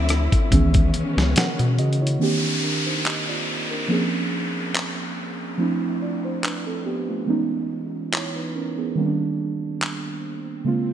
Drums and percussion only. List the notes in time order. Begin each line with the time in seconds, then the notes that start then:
0.09 cross-stick, closed hi-hat
0.32 kick, closed hi-hat
0.52 kick, closed hi-hat
0.74 kick, closed hi-hat
0.94 closed hi-hat
1.18 snare
1.36 snare, closed hi-hat
1.59 closed hi-hat
1.78 closed hi-hat, open hi-hat
1.93 closed hi-hat
2.07 closed hi-hat
3.06 clap
4.75 clap
6.44 clap
8.14 clap
9.82 clap